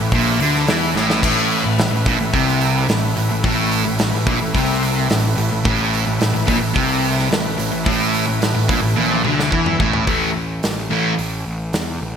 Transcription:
Already playing: A1 A3 E4 B4
0.00 A2
0.12 A#1 A#2, kick, open hi-hat
0.40 D2 D3, open hi-hat
0.55 snare
0.67 E2 E3, snare, open hi-hat
0.95 A1 A2, snare
1.10 snare
1.22 A1 A2, kick, open hi-hat, crash
1.51 open hi-hat
1.64 A1 A2
1.78 A1 A2, snare, open hi-hat
1.92 A1 A2
2.06 A#1 A#2, kick, open hi-hat
2.19 A1 A2
2.33 C2 C3, kick, open hi-hat
2.61 open hi-hat
2.88 A1 A2, snare, open hi-hat
3.16 A1 A2, open hi-hat
3.31 A1 A2
3.44 A1 A2, kick, open hi-hat
3.71 open hi-hat
3.85 A1 A2
3.99 A1 A2, snare, open hi-hat
4.13 A1 A2
4.26 A#1 A#2, kick, open hi-hat
4.41 A1 A2
4.54 C2 C3, kick, open hi-hat
4.83 open hi-hat
5.09 A1 A2, snare, open hi-hat
5.36 A1 A2, open hi-hat
5.50 A1 A2
5.65 A1 A2, kick, open hi-hat
5.94 open hi-hat
6.06 A1 A2
6.20 A1 A2, snare, open hi-hat
6.33 A1 A2
6.47 A#1 A#2, kick, open hi-hat
6.60 A1 A2
6.74 C2 C3, kick, open hi-hat
7.04 open hi-hat
7.19 snare
7.30 A1 A2, snare, open hi-hat
7.58 A1 A2, open hi-hat
7.72 A1 A2
7.85 A1 A2, kick, open hi-hat
8.14 open hi-hat
8.27 A1 A2
8.41 A1 A2, snare, open hi-hat
8.55 A1 A2
8.69 A#1 A#2, kick, open hi-hat
8.83 A1 A2
8.96 A#1 A#2, high tom
9.11 high tom
9.24 D2 D3, mid tom
9.40 snare
9.51 E2 E3, kick
9.66 mid tom
9.79 A1 A2, kick
9.93 floor tom
10.07 A1 A2 E3 A3, kick, open hi-hat
10.36 A1
10.63 A1, snare, open hi-hat
10.90 A1 A2 E3 A3
11.18 A1, open hi-hat
11.46 A1
11.73 E2, snare, open hi-hat
12.01 A1

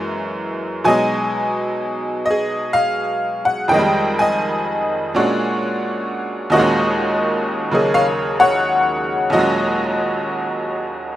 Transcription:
Already playing: F#2 E3 G#3 A#3
0.84 B2 F#3 G#3 D#5 G#5
0.89 D#4
2.26 D#5
2.31 G#4
2.73 F5
3.45 F#5
3.68 F2 D#3 G5
3.74 G#3 D#5
3.79 G3
4.19 D#5 G#5
5.15 A#2 G#3 C#4 D4 F#4
6.50 D#2 A#2 F#4 D#5
6.55 D#3 G#3
6.60 C#4 F#4
7.71 C#3 F#3 A#3 D#4 G#4
7.94 C#5 F5
8.40 C#5 F#5
9.30 D#2 A#2 D#5
9.34 F#3 G#3 F#4
9.39 C#4 F#4

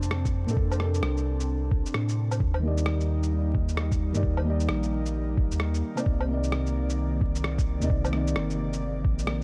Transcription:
Already playing: F2 C3 A#3 C4 D4 A4 A5
0.02 shaker
0.11 cross-stick
0.25 kick, shaker
0.46 A2 A#3 D4 A4, shaker
0.57 F2, kick
0.72 low woodblock, shaker
0.76 A#4, cross-stick
0.80 D4 A4
0.94 shaker
1.02 C2, cross-stick
1.17 shaker
1.40 shaker
1.71 kick
1.86 shaker
1.94 A2, cross-stick
2.09 shaker
2.31 low woodblock, shaker
2.40 D#2 G3 A#3 D#4, kick
2.54 low woodblock
2.60 D#3 A#3
2.65 G4 D5
2.78 shaker
2.86 cross-stick
3.00 shaker
3.23 shaker
3.55 kick
3.69 shaker
3.77 cross-stick
3.92 kick, shaker
4.12 G2 D#3 A#3 G4, shaker
4.17 D5
4.23 D#2, kick
4.37 low woodblock
4.42 D#3 A#3
4.47 G4 D5
4.60 shaker
4.69 A#1, cross-stick
4.83 shaker
5.06 shaker
5.37 kick
5.51 D#2, shaker
5.60 cross-stick
5.74 shaker
5.95 C3 A#3 D#4, low woodblock, shaker
5.99 D5
6.06 C2 C3 D#3 D5, kick
6.21 low woodblock
6.26 C3 A#3
6.31 D#4 D5
6.44 shaker
6.52 cross-stick
6.66 shaker
6.90 shaker
7.21 kick
7.35 shaker
7.44 cross-stick
7.58 kick, shaker
7.80 D#2 C3 A#3 D#4, shaker
7.84 D5
7.90 C2, kick
8.05 low woodblock, shaker
8.09 C3 A#3, cross-stick
8.15 D#4 D5
8.27 shaker
8.35 G1, cross-stick
8.50 shaker
8.73 shaker
9.04 A#1, kick
9.19 shaker
9.27 cross-stick

